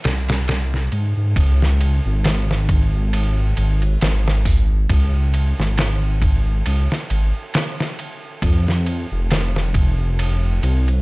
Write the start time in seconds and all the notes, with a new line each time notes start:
0.04 C2, snare, ride
0.29 snare, ride
0.48 snare, ride
0.74 snare
0.92 G#2, ride
1.17 G#2
1.36 C#2, kick, ride
1.62 snare
1.81 ride
2.05 G#1
2.24 snare, ride
2.51 snare
2.69 kick, ride
3.13 ride
3.57 G#1, ride
3.82 ride
4.01 G#1, snare, ride
4.28 snare
4.45 kick, open hi-hat
4.89 C#2, kick, ride
5.34 ride
5.59 G#1, snare
5.78 snare, ride
6.22 kick, ride
6.66 C#2, ride
6.92 snare
7.10 G#1, ride
7.54 snare, ride
7.80 snare
7.99 ride
8.42 F2, kick, ride
8.68 snare
8.86 ride
9.12 F1
9.31 snare, ride
9.56 snare
9.74 kick, ride
10.19 ride
10.63 C2, ride
10.88 ride